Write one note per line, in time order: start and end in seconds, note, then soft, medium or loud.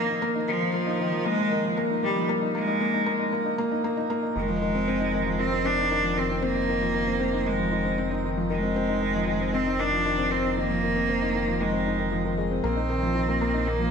0.00 0.48 D#3 medium
0.00 0.61 F3 medium
0.00 0.20 A#3 loud
0.00 0.22 A#3 loud
0.00 0.09 D#4 medium
0.09 0.20 D#4 medium
0.22 0.35 A#3 loud
0.35 0.48 D#4 medium
0.48 0.61 D#3 medium
0.48 1.27 F3 medium
0.61 0.68 F3 medium
0.74 0.86 A#3 medium
0.87 0.99 D#4 medium
1.00 1.12 D#3 medium
1.12 1.20 F3 medium
1.25 1.77 G#3 loud
1.25 1.38 A#3 medium
1.39 1.51 D#4 medium
1.52 1.64 D#3 medium
1.64 1.72 F3 medium
1.77 1.90 A#3 loud
1.90 2.03 D#4 medium
2.03 2.16 D#3 medium
2.03 2.27 G3 loud
2.16 2.24 F3 medium
2.29 2.42 A#3 loud
2.42 2.53 D#4 medium
2.55 3.29 G#3 loud
2.55 2.67 A#3 loud
2.68 2.79 D#4 medium
2.81 2.93 A#3 loud
2.94 3.05 D#4 medium
3.06 3.19 A#3 loud
3.19 3.30 D#4 medium
3.32 3.45 A#3 loud
3.46 3.57 D#4 medium
3.58 3.71 A#3 loud
3.72 3.82 D#4 medium
3.84 3.97 A#3 loud
3.97 4.08 D#4 medium
4.10 4.22 A#3 loud
4.23 4.34 D#4 medium
4.36 12.61 F1 medium
4.36 4.48 D#3 medium
4.36 5.41 G#3 loud
4.49 4.56 F3 medium
4.62 4.74 D#3 medium
4.75 4.82 C4 medium
4.88 5.00 C4 loud
5.01 5.13 D#4 medium
5.14 5.26 D#3 medium
5.26 5.34 F3 medium
5.39 5.52 D#3 medium
5.39 5.67 C4 loud
5.52 5.60 C4 medium
5.65 5.78 C4 medium
5.65 6.19 D4 loud
5.78 5.90 D#4 medium
5.91 6.03 D#3 medium
6.03 6.11 F3 medium
6.16 6.29 D#3 medium
6.16 6.45 C4 loud
6.30 6.37 C4 medium
6.42 7.48 A#3 loud
6.42 6.55 C4 loud
6.55 6.68 D#4 medium
6.68 6.81 D#3 medium
6.81 6.89 F3 medium
6.94 7.07 D#3 medium
7.07 7.15 C4 medium
7.20 7.33 C4 loud
7.33 7.46 D#4 medium
7.46 7.59 D#3 medium
7.46 8.24 G#3 medium
7.59 7.67 F3 medium
7.72 7.84 D#3 medium
7.85 7.93 C4 medium
7.98 8.10 C4 loud
8.11 8.23 D#4 medium
8.24 8.36 D#3 medium
8.37 8.45 F3 medium
8.50 8.62 D#3 medium
8.50 9.56 G#3 loud
8.63 8.70 C4 medium
8.76 8.88 C4 loud
8.89 9.01 D#4 medium
9.02 9.14 D#3 medium
9.15 9.22 F3 medium
9.28 9.40 D#3 medium
9.41 9.48 C4 medium
9.53 9.66 C4 loud
9.53 9.82 C4 loud
9.67 9.79 D#4 medium
9.80 9.92 D#3 medium
9.80 10.33 D4 loud
9.93 10.00 F3 medium
10.05 10.18 D#3 medium
10.18 10.26 C4 medium
10.31 10.43 C4 loud
10.31 10.58 C4 loud
10.44 10.56 D#4 medium
10.57 10.69 D#3 medium
10.57 11.62 A#3 loud
10.70 10.77 F3 medium
10.83 10.95 D#3 medium
10.96 11.03 C4 medium
11.09 11.21 C4 medium
11.22 11.34 D#4 medium
11.35 11.47 D#3 medium
11.48 11.55 F3 medium
11.60 11.73 D#3 medium
11.60 12.38 G#3 medium
11.73 11.81 C4 medium
11.86 11.94 D#4 medium
11.99 12.07 D#3 medium
12.12 12.19 F3 medium
12.25 12.37 D#3 medium
12.38 12.50 G#3 medium
12.51 12.63 C4 medium
12.64 13.91 A#1 medium
12.64 12.76 A#3 loud
12.64 13.69 C4 medium
12.77 12.89 D#4 medium
12.90 13.02 D#3 medium
13.03 13.10 F3 medium
13.15 13.28 D#3 medium
13.28 13.36 A#3 medium
13.41 13.54 A#3 loud
13.54 13.67 D#4 medium
13.67 13.79 D#3 medium
13.67 13.91 A#3 loud
13.80 13.87 F3 medium